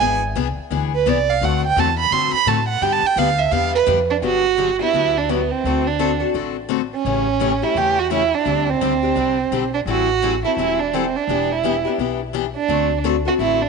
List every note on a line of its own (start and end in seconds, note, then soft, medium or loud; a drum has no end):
0.00 0.35 G#1 medium
0.00 0.21 E3 medium
0.00 0.21 B3 medium
0.00 0.21 D4 medium
0.00 0.22 G#4 medium
0.00 0.12 G#5 loud
0.35 0.56 C2 medium
0.35 0.46 E3 medium
0.35 0.47 B3 medium
0.35 0.47 D4 medium
0.35 0.47 G#4 loud
0.57 muted upright bass stroke soft
0.70 1.05 D2 medium
0.70 0.91 E3 medium
0.70 0.92 B3 medium
0.70 0.92 D4 medium
0.70 0.92 G#4 medium
0.95 1.11 B4 medium
1.06 1.40 C2 medium
1.06 1.17 E3 medium
1.06 1.17 B3 medium
1.06 1.17 D4 medium
1.06 1.18 G#4 loud
1.06 1.32 D5 medium
1.31 1.46 F5 loud
1.41 1.75 D2 medium
1.41 1.62 D3 medium
1.41 1.62 A3 medium
1.41 1.63 C4 medium
1.41 1.63 F#4 medium
1.41 1.63 A4 medium
1.41 1.65 F#5 medium
1.67 1.81 G5 loud
1.76 2.10 E2 loud
1.76 1.88 D3 medium
1.76 1.88 A3 medium
1.76 1.88 C4 medium
1.76 1.88 F#4 loud
1.76 1.88 A4 loud
1.76 1.99 A5 medium
2.00 2.14 B5 loud
2.11 2.31 F#2 medium
2.11 2.32 D3 medium
2.11 2.32 A3 medium
2.11 2.33 C4 medium
2.11 2.33 F#4 medium
2.11 2.33 A4 medium
2.11 2.34 C6 loud
2.33 2.50 B5 loud
2.33 muted upright bass stroke soft
2.46 2.81 A2 medium
2.46 2.58 D3 loud
2.46 2.58 A3 loud
2.46 2.58 C4 medium
2.46 2.58 F#4 medium
2.46 2.59 A4 medium
2.46 2.68 A5 medium
2.69 2.84 F#5 loud
2.81 3.02 G2 medium
2.81 3.03 D3 medium
2.81 3.03 G3 medium
2.81 3.03 B3 medium
2.81 3.03 D4 medium
2.81 3.03 G4 medium
2.81 2.94 G5 medium
2.93 3.08 A5 loud
3.02 muted upright bass stroke soft
3.07 3.20 G5 loud
3.16 3.51 D2 medium
3.16 3.28 D3 loud
3.16 3.28 G3 medium
3.16 3.28 B3 medium
3.16 3.29 D4 medium
3.16 3.29 G4 loud
3.16 3.40 F5 medium
3.39 3.53 E5 medium
3.51 3.86 E2 medium
3.51 3.72 D3 medium
3.51 3.73 G3 medium
3.51 3.73 B3 medium
3.51 3.73 D4 medium
3.51 3.73 G4 medium
3.51 3.74 F5 medium
3.75 3.83 B4 loud
3.86 4.21 F2 medium
3.86 3.98 D3 medium
3.86 3.98 G3 loud
3.86 3.98 B3 loud
3.86 3.99 D4 loud
3.86 3.98 G4 loud
4.11 4.16 D4 medium
4.22 4.79 G1 medium
4.22 4.43 D3 medium
4.22 4.44 F#3 medium
4.22 4.44 B3 medium
4.22 4.44 D4 medium
4.22 4.76 F#4 loud
4.22 4.44 G4 medium
4.57 4.69 D3 medium
4.57 4.69 F#3 medium
4.57 4.69 B3 medium
4.57 4.69 D4 medium
4.57 4.69 G4 medium
4.79 4.93 B3 soft
4.79 4.93 D4 soft
4.79 5.20 E4 medium
4.79 4.93 G4 soft
4.93 5.50 D2 medium
4.93 5.14 D3 medium
4.93 5.15 F#3 medium
4.93 5.15 B3 medium
4.93 5.15 D4 medium
4.93 5.15 G4 medium
5.18 5.32 D4 medium
5.29 5.40 D3 medium
5.29 5.40 F#3 medium
5.29 5.40 B3 medium
5.29 5.53 B3 medium
5.29 5.40 D4 medium
5.29 5.40 G4 medium
5.52 5.89 C4 medium
5.64 6.20 D2 medium
5.64 5.85 D3 medium
5.64 5.85 A3 medium
5.64 5.86 C4 medium
5.64 5.86 F#4 medium
5.64 5.86 A4 medium
5.87 6.21 D4 medium
5.99 6.10 D3 medium
5.99 6.10 A3 medium
5.99 6.10 C4 medium
5.99 6.10 F#4 medium
5.99 6.11 A4 medium
6.20 6.34 C4 soft
6.20 6.34 F#4 soft
6.20 6.33 A4 medium
6.34 6.91 A1 medium
6.34 6.55 D3 medium
6.34 6.55 A3 medium
6.34 6.55 C4 medium
6.34 6.55 F#4 medium
6.34 6.56 A4 medium
6.69 6.80 D3 medium
6.69 6.80 A3 medium
6.69 6.81 C4 medium
6.69 6.81 F#4 medium
6.69 6.81 A4 medium
6.95 7.65 C#4 medium
7.05 7.61 A1 medium
7.05 7.26 C#3 medium
7.05 7.26 E3 medium
7.05 7.26 A3 medium
7.05 7.26 C#4 medium
7.05 7.26 G4 medium
7.40 7.51 C#3 medium
7.40 7.51 E3 medium
7.40 7.52 A3 medium
7.40 7.52 C#4 loud
7.40 7.52 G4 medium
7.62 7.76 A3 soft
7.62 7.76 C#4 soft
7.62 7.80 E4 medium
7.62 7.75 G4 medium
7.75 8.31 E2 medium
7.75 7.96 C#3 medium
7.75 7.97 E3 medium
7.75 7.97 A3 medium
7.75 7.97 C#4 medium
7.75 7.97 G4 medium
7.75 8.01 G4 medium
7.99 8.12 F#4 medium
8.10 8.21 C#3 medium
8.10 8.22 E3 medium
8.10 8.22 A3 medium
8.10 8.22 C#4 medium
8.10 8.36 E4 medium
8.10 8.22 G4 medium
8.35 8.72 D4 medium
8.45 8.74 D2 medium
8.45 8.66 D3 medium
8.45 8.66 G3 medium
8.45 8.67 C4 medium
8.45 8.67 D4 medium
8.45 8.67 G4 medium
8.70 9.73 C4 medium
8.81 9.11 D2 medium
8.81 8.92 D3 medium
8.81 8.92 G3 medium
8.81 8.92 C4 medium
8.81 8.93 D4 medium
8.81 8.93 G4 medium
9.03 9.15 C4 soft
9.03 9.16 D4 soft
9.03 9.16 G4 soft
9.15 9.46 C2 medium
9.15 9.37 D3 medium
9.15 9.37 G3 medium
9.15 9.37 C4 medium
9.15 9.37 D4 medium
9.15 9.37 G4 medium
9.51 9.81 B1 medium
9.51 9.63 D3 medium
9.51 9.63 G3 medium
9.51 9.63 C4 medium
9.51 9.63 D4 medium
9.51 9.63 G4 medium
9.74 9.80 D4 medium
9.86 10.42 A1 medium
9.86 10.08 E3 medium
9.86 10.08 G3 medium
9.86 10.08 C4 medium
9.86 10.08 E4 medium
9.86 10.40 F#4 loud
9.86 10.08 A4 medium
10.22 10.33 E3 medium
10.22 10.33 G3 medium
10.22 10.34 C4 medium
10.22 10.34 E4 medium
10.22 10.34 A4 medium
10.45 10.58 C4 soft
10.45 10.57 E4 medium
10.45 10.58 E4 soft
10.45 10.57 A4 medium
10.57 11.13 E1 medium
10.57 10.78 E3 medium
10.57 10.79 G3 medium
10.57 10.79 C4 medium
10.57 10.81 E4 medium
10.57 10.79 E4 medium
10.57 10.79 A4 medium
10.80 10.96 D4 medium
10.93 11.04 E3 medium
10.93 11.04 G3 medium
10.93 11.04 C4 medium
10.93 11.18 C4 medium
10.93 11.05 E4 medium
10.93 11.05 A4 medium
11.16 11.54 D4 medium
11.27 11.84 E1 medium
11.27 11.49 E3 medium
11.27 11.49 B3 medium
11.27 11.49 D4 medium
11.27 11.50 G4 medium
11.52 11.86 E4 medium
11.63 11.74 E3 medium
11.63 11.75 B3 medium
11.63 11.75 D4 medium
11.63 11.75 G4 medium
11.85 11.98 B3 soft
11.85 11.99 D4 medium
11.85 11.98 G4 medium
11.98 12.55 B1 medium
11.98 12.19 E3 medium
11.98 12.20 B3 medium
11.98 12.20 D4 medium
11.98 12.20 G4 medium
12.33 12.44 E3 medium
12.33 12.45 B3 medium
12.33 12.45 D4 medium
12.33 12.45 G4 medium
12.56 13.01 D4 medium
12.68 13.25 D2 medium
12.68 12.89 D3 medium
12.68 12.90 A3 medium
12.68 12.90 C4 medium
12.68 12.90 F#4 medium
12.68 12.90 A4 medium
13.04 13.15 D3 medium
13.04 13.15 A3 medium
13.04 13.15 C4 medium
13.04 13.16 F#4 medium
13.04 13.15 A4 medium
13.25 13.39 C4 soft
13.25 13.39 F#4 medium
13.25 13.34 F#4 medium
13.25 13.38 A4 soft
13.39 13.69 A1 medium
13.39 13.60 D3 medium
13.39 13.60 A3 medium
13.39 13.61 C4 medium
13.39 13.64 E4 medium
13.39 13.61 F#4 medium
13.39 13.61 A4 medium
13.62 13.69 D4 medium